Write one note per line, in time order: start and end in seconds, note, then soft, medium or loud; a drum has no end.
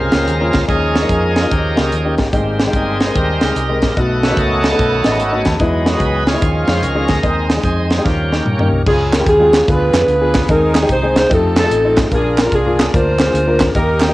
0.00 0.64 C#3 soft
0.00 0.65 G#3 soft
0.00 0.65 C4 medium
0.00 0.65 F4 medium
0.00 0.65 A#4 medium
0.00 0.65 F5 medium
0.00 1.48 G#5 medium
0.00 2.29 A#5 medium
0.12 0.26 C#2 medium
0.12 0.27 A#3 medium
0.12 0.27 C#4 medium
0.12 0.27 F4 medium
0.12 0.27 G4 medium
0.12 snare loud
0.12 closed hi-hat medium
0.28 0.50 D#2 medium
0.28 closed hi-hat medium
0.40 0.61 A#3 medium
0.40 0.61 C#4 medium
0.40 0.61 F4 medium
0.40 0.61 A#4 medium
0.53 0.67 D2 medium
0.53 kick medium
0.53 snare loud
0.53 closed hi-hat medium
0.68 1.04 D#2 medium
0.68 1.32 D#3 medium
0.68 1.47 F3 soft
0.68 1.47 G#3 soft
0.68 0.94 A#3 medium
0.68 0.94 C#4 medium
0.68 1.47 C#4 medium
0.68 0.94 D#4 medium
0.68 0.94 G#4 medium
0.68 1.09 G#4 medium
0.68 1.09 A#4 medium
0.68 2.31 D#5 medium
0.68 0.96 D#5 medium
0.68 kick loud
0.68 closed hi-hat medium
0.95 1.10 C#5 medium
0.95 snare loud
0.95 closed hi-hat medium
1.02 1.31 A#3 medium
1.02 1.31 C#4 medium
1.02 1.31 D#4 medium
1.02 1.31 G#4 medium
1.09 1.44 F2 medium
1.09 2.15 G#4 medium
1.09 2.15 A#4 medium
1.09 2.15 D#5 medium
1.09 kick medium
1.09 closed hi-hat medium
1.36 snare medium
1.36 closed hi-hat medium
1.42 1.50 A#3 medium
1.42 1.50 C#4 medium
1.42 1.50 D#4 medium
1.42 1.50 F4 medium
1.50 1.74 D#2 medium
1.50 2.14 D#3 medium
1.50 2.15 F3 medium
1.50 2.16 C#4 medium
1.50 2.15 G4 soft
1.50 3.94 G5 medium
1.50 kick loud
1.50 closed hi-hat medium
1.76 1.90 C#2 medium
1.76 1.91 A#3 medium
1.76 1.91 C#4 medium
1.76 1.91 D#4 medium
1.76 1.91 G4 medium
1.76 snare medium
1.76 closed hi-hat medium
1.92 2.15 D#2 medium
1.92 closed hi-hat medium
2.05 2.25 A#3 medium
2.05 2.25 C#4 medium
2.05 2.25 D#4 medium
2.05 2.25 G4 medium
2.18 2.31 G1 medium
2.18 kick medium
2.18 snare medium
2.18 closed hi-hat medium
2.33 2.68 G#1 loud
2.33 2.97 G#2 medium
2.33 2.98 G3 soft
2.33 2.59 G#3 medium
2.33 2.98 A#3 soft
2.33 2.59 C4 medium
2.33 2.75 C4 soft
2.33 2.59 D#4 medium
2.33 2.59 G4 medium
2.33 5.57 D#5 medium
2.33 3.95 G#5 medium
2.33 3.95 C6 medium
2.33 kick medium
2.33 closed hi-hat medium
2.59 snare medium
2.59 closed hi-hat medium
2.67 2.95 G#3 medium
2.67 2.95 C4 medium
2.67 2.95 D#4 medium
2.67 2.95 G4 medium
2.73 3.08 G1 medium
2.73 3.53 C4 medium
2.73 3.15 D#4 medium
2.73 3.17 G#4 medium
2.73 kick medium
2.73 closed hi-hat medium
3.00 snare medium
3.00 closed hi-hat medium
3.07 3.27 G#3 medium
3.07 3.27 C4 medium
3.07 3.27 D#4 medium
3.07 3.27 A#4 medium
3.15 3.37 D#2 medium
3.15 3.93 G3 medium
3.15 3.93 D#4 medium
3.15 4.00 A#4 medium
3.15 kick loud
3.15 closed hi-hat medium
3.41 3.54 C#2 medium
3.41 3.56 G#3 medium
3.41 3.56 C4 medium
3.41 3.56 D#4 medium
3.41 3.56 G4 medium
3.41 snare loud
3.41 closed hi-hat medium
3.56 3.83 C2 medium
3.56 closed hi-hat medium
3.69 3.89 G#3 medium
3.69 3.89 C4 medium
3.69 3.89 D#4 medium
3.69 3.89 A#4 medium
3.82 3.95 A#1 medium
3.82 kick medium
3.82 snare medium
3.82 closed hi-hat medium
3.96 4.31 B1 loud
3.96 4.60 B2 medium
3.96 4.23 A3 medium
3.96 4.23 B3 medium
3.96 4.22 D#4 medium
3.96 4.37 F#4 medium
3.96 4.23 F#4 medium
3.96 4.37 A4 medium
3.96 4.25 D#5 medium
3.96 5.58 F#5 medium
3.96 5.59 A5 medium
3.96 6.39 B5 medium
3.96 kick loud
3.96 closed hi-hat medium
4.23 5.56 D#3 soft
4.23 5.56 A3 soft
4.23 5.56 C#4 medium
4.23 4.39 B4 medium
4.23 snare medium
4.23 closed hi-hat medium
4.30 4.59 A3 medium
4.30 4.59 B3 medium
4.30 4.59 D#4 medium
4.30 4.59 F#4 medium
4.37 4.72 C#2 medium
4.37 5.42 F#4 medium
4.37 5.42 A4 medium
4.37 5.42 D#5 medium
4.37 kick medium
4.37 closed hi-hat medium
4.64 snare medium
4.64 closed hi-hat medium
4.72 4.92 A3 medium
4.72 4.92 B3 medium
4.72 4.91 D#4 medium
4.72 4.92 A4 medium
4.79 5.01 B1 medium
4.79 kick loud
4.79 closed hi-hat medium
5.04 5.17 A1 medium
5.04 5.19 A3 medium
5.04 5.19 B3 medium
5.04 5.19 D#4 medium
5.04 5.19 A4 medium
5.04 5.19 D#5 medium
5.04 snare medium
5.04 closed hi-hat medium
5.20 5.42 G#1 medium
5.20 5.45 F#5 medium
5.20 closed hi-hat medium
5.32 5.52 A3 medium
5.32 5.52 B3 medium
5.32 5.52 D#4 medium
5.32 5.52 F#4 medium
5.45 5.58 D#2 medium
5.45 5.59 A5 medium
5.45 kick medium
5.45 snare loud
5.45 closed hi-hat medium
5.60 5.95 E2 loud
5.60 6.23 E3 medium
5.60 6.24 F#3 soft
5.60 6.24 G#3 soft
5.60 5.86 G#3 medium
5.60 5.86 B3 medium
5.60 5.86 D#4 medium
5.60 6.24 D#4 medium
5.60 5.86 E4 loud
5.60 6.41 B4 medium
5.60 8.83 D#5 medium
5.60 8.02 G#5 medium
5.60 kick loud
5.60 closed hi-hat medium
5.86 snare loud
5.86 closed hi-hat medium
5.93 6.22 G#3 medium
5.93 6.22 B3 medium
5.93 6.22 D#4 medium
5.93 6.22 F#4 medium
6.00 6.35 C#2 loud
6.00 6.28 B4 medium
6.00 kick medium
6.00 closed hi-hat medium
6.27 6.41 C#4 medium
6.27 7.05 F4 medium
6.27 6.69 G#4 loud
6.27 snare loud
6.27 closed hi-hat medium
6.33 6.41 G#3 medium
6.33 6.41 B3 medium
6.33 6.41 D#4 medium
6.33 6.41 E4 medium
6.41 6.64 D#2 medium
6.41 7.05 D#3 medium
6.41 7.19 F3 medium
6.41 7.19 G#3 soft
6.41 7.19 C#4 medium
6.41 7.22 F5 medium
6.41 7.22 C#6 medium
6.41 kick loud
6.41 closed hi-hat medium
6.68 6.84 F2 medium
6.68 6.82 G#3 medium
6.68 6.82 C#4 medium
6.68 6.82 D#4 medium
6.68 6.82 F4 medium
6.68 6.83 C5 medium
6.68 snare medium
6.68 closed hi-hat medium
6.82 7.05 C#2 medium
6.82 7.09 A#4 medium
6.82 closed hi-hat medium
6.95 7.15 G#3 medium
6.95 7.15 C#4 medium
6.95 7.16 D#4 medium
6.95 7.15 G#4 medium
7.08 7.21 D2 medium
7.08 7.63 D#4 medium
7.08 7.47 A#4 loud
7.08 kick medium
7.08 snare loud
7.08 closed hi-hat medium
7.22 7.58 D#2 loud
7.22 7.53 D#3 soft
7.22 7.86 D#3 medium
7.22 7.53 G#3 soft
7.22 7.49 G#3 medium
7.22 7.54 C4 medium
7.22 7.49 C4 medium
7.22 7.49 D#4 medium
7.22 7.49 G#4 medium
7.22 8.05 C5 medium
7.22 8.05 C6 medium
7.22 kick medium
7.22 closed hi-hat medium
7.50 snare loud
7.50 closed hi-hat medium
7.57 7.85 G#3 medium
7.57 7.85 C4 medium
7.57 7.85 D#4 medium
7.57 7.85 G#4 medium
7.63 7.98 F2 loud
7.63 8.02 C4 medium
7.63 8.02 D#4 medium
7.63 8.07 G#4 medium
7.63 kick medium
7.63 closed hi-hat medium
7.90 snare medium
7.90 closed hi-hat medium
7.98 8.05 G#3 medium
7.98 8.05 C4 medium
7.98 8.05 D#4 medium
7.98 8.05 G4 medium
8.04 8.40 D#2 medium
8.04 8.69 D#3 medium
8.04 8.35 F3 medium
8.04 8.35 G3 soft
8.04 8.82 A#3 medium
8.04 8.83 C#4 medium
8.04 8.68 G4 medium
8.04 8.85 C#5 medium
8.04 8.85 G5 medium
8.04 8.85 A#5 medium
8.04 kick medium
8.04 snare soft
8.32 8.46 A#3 medium
8.32 8.46 C#4 medium
8.32 8.46 D#4 medium
8.32 8.46 G4 medium
8.32 snare medium
8.45 8.68 G2 medium
8.45 mid tom medium
8.59 8.79 A#3 medium
8.59 8.79 C#4 medium
8.59 8.79 D#4 medium
8.59 8.79 G4 medium
8.59 floor tom medium
8.71 8.84 C2 medium
8.86 9.21 C#2 loud
8.86 9.50 C#3 medium
8.86 9.66 F3 medium
8.86 9.66 G#3 medium
8.86 9.12 G#3 medium
8.86 9.67 C#4 medium
8.86 9.12 C#4 medium
8.86 9.27 C#4 medium
8.86 9.12 F4 medium
8.86 9.27 F4 medium
8.86 9.66 G#4 medium
8.86 9.12 G#4 medium
8.86 kick loud
8.86 crash medium
9.13 9.27 A#4 medium
9.13 snare loud
9.13 clap medium
9.13 closed hi-hat medium
9.20 9.31 G#3 medium
9.20 9.31 C#4 medium
9.20 9.31 F4 medium
9.20 9.31 G4 medium
9.27 9.61 D#2 medium
9.27 9.65 C#4 medium
9.27 9.65 F4 medium
9.27 9.68 G#4 medium
9.27 kick medium
9.27 closed hi-hat medium
9.40 9.60 G#3 medium
9.40 9.60 C#4 medium
9.40 9.60 F4 medium
9.40 9.60 G4 medium
9.53 snare medium
9.53 clap medium
9.53 closed hi-hat medium
9.68 9.90 D2 medium
9.68 10.31 D3 medium
9.68 10.48 F3 medium
9.68 9.93 B3 medium
9.68 10.48 B3 medium
9.68 9.94 D4 medium
9.68 10.48 D4 medium
9.68 9.94 F4 medium
9.68 10.46 F4 medium
9.68 9.93 G#4 medium
9.68 10.46 G#4 medium
9.68 10.49 G#4 medium
9.68 10.50 B4 medium
9.68 kick loud
9.68 closed hi-hat medium
9.93 10.06 F2 medium
9.93 snare loud
9.93 clap loud
9.93 closed hi-hat medium
10.01 10.12 B3 medium
10.01 10.12 D4 medium
10.01 10.12 F4 medium
10.01 10.12 B4 medium
10.07 10.42 D2 medium
10.07 closed hi-hat loud
10.21 10.41 B3 medium
10.21 10.41 D4 medium
10.21 10.42 F4 medium
10.21 10.41 G#4 medium
10.34 kick loud
10.34 snare loud
10.34 clap medium
10.34 closed hi-hat medium
10.48 10.84 D#2 loud
10.48 11.12 D#3 medium
10.48 11.30 D#3 medium
10.48 10.75 G#3 medium
10.48 11.29 G#3 medium
10.48 11.29 C4 medium
10.48 10.75 C4 medium
10.48 10.75 D#4 medium
10.48 11.27 D#4 medium
10.48 10.75 G#4 medium
10.48 11.30 G#4 medium
10.48 10.76 A#4 medium
10.48 kick loud
10.48 closed hi-hat medium
10.75 10.91 G#4 medium
10.75 snare loud
10.75 clap medium
10.75 closed hi-hat medium
10.83 10.94 G#3 medium
10.83 10.94 C4 medium
10.83 10.94 D#4 medium
10.83 10.94 G4 medium
10.89 11.24 C2 loud
10.89 11.15 C5 loud
10.89 kick medium
10.89 closed hi-hat medium
11.03 11.23 G#3 medium
11.03 11.23 C4 medium
11.03 11.23 D#4 medium
11.03 11.23 G#4 medium
11.16 11.31 C5 loud
11.16 snare loud
11.16 clap medium
11.16 closed hi-hat medium
11.29 11.65 F2 loud
11.29 12.10 F3 medium
11.29 11.55 A3 medium
11.29 12.10 A3 medium
11.29 11.56 C4 medium
11.29 11.56 D#4 medium
11.29 12.10 D#4 medium
11.29 11.57 D#4 medium
11.29 11.56 F4 medium
11.29 11.56 G4 medium
11.29 12.10 G4 medium
11.29 kick loud
11.29 closed hi-hat medium
11.34 11.58 A4 medium
11.56 12.09 C4 medium
11.56 12.09 D#4 medium
11.56 11.96 A4 loud
11.56 snare loud
11.56 clap loud
11.56 closed hi-hat medium
11.63 11.75 A3 medium
11.63 11.75 D#4 medium
11.63 11.75 F4 medium
11.63 11.75 A4 medium
11.71 12.06 A1 medium
11.71 closed hi-hat medium
11.84 12.05 A3 medium
11.84 12.05 D#4 medium
11.84 12.04 F4 medium
11.84 12.04 A4 medium
11.97 kick medium
11.97 snare loud
11.97 clap medium
11.97 closed hi-hat medium
12.11 12.46 A#1 loud
12.11 12.75 A#2 medium
12.11 13.72 F3 medium
12.11 13.71 A#3 medium
12.11 12.37 A#3 medium
12.11 12.18 C#4 soft
12.11 12.38 D4 medium
12.11 12.53 D4 medium
12.11 12.38 F4 medium
12.11 12.53 F4 medium
12.11 12.38 G#4 medium
12.11 13.72 A#4 medium
12.11 12.38 A#4 medium
12.11 kick medium
12.11 closed hi-hat medium
12.16 13.74 D4 medium
12.38 12.54 A#4 loud
12.38 snare loud
12.38 clap medium
12.38 closed hi-hat medium
12.45 12.56 A#3 medium
12.45 12.57 D4 medium
12.45 12.57 F4 medium
12.45 12.57 A#4 medium
12.52 12.87 C2 loud
12.52 13.31 D4 medium
12.52 12.93 F4 medium
12.52 12.94 G#4 medium
12.52 kick medium
12.52 closed hi-hat medium
12.66 12.86 A#3 medium
12.66 12.86 D4 medium
12.66 12.86 F4 medium
12.66 12.86 G#4 medium
12.79 snare loud
12.79 clap medium
12.79 closed hi-hat medium
12.94 13.29 D2 loud
12.94 13.19 A#3 medium
12.94 13.19 D4 medium
12.94 13.20 F4 medium
12.94 13.72 F4 medium
12.94 13.19 A#4 medium
12.94 13.72 C5 loud
12.94 kick loud
12.94 closed hi-hat medium
13.19 snare loud
13.19 clap loud
13.19 closed hi-hat medium
13.27 13.38 A#3 medium
13.27 13.38 D4 medium
13.27 13.38 F4 medium
13.27 13.38 G#4 medium
13.34 13.69 D2 loud
13.34 closed hi-hat medium
13.47 13.67 A#3 medium
13.47 13.67 D4 medium
13.47 13.67 F4 medium
13.47 13.67 A#4 medium
13.60 kick medium
13.60 snare loud
13.60 clap medium
13.60 closed hi-hat medium
13.75 14.10 D#2 loud
13.75 14.14 D#3 medium
13.75 14.14 G3 medium
13.75 14.14 A#3 medium
13.75 14.01 A#3 medium
13.75 14.14 D#4 medium
13.75 14.01 D#4 medium
13.75 14.14 D#4 medium
13.75 14.01 G4 medium
13.75 14.02 G4 medium
13.75 13.81 G#4 medium
13.75 14.01 A#4 medium
13.75 14.02 A#4 loud
13.75 kick loud
13.75 closed hi-hat medium
13.80 14.14 A#4 medium
14.00 14.14 G4 medium
14.00 snare loud
14.00 clap medium
14.00 closed hi-hat medium
14.08 14.14 A#3 medium
14.08 14.14 D#4 medium
14.08 14.14 G4 medium
14.08 14.14 A#4 medium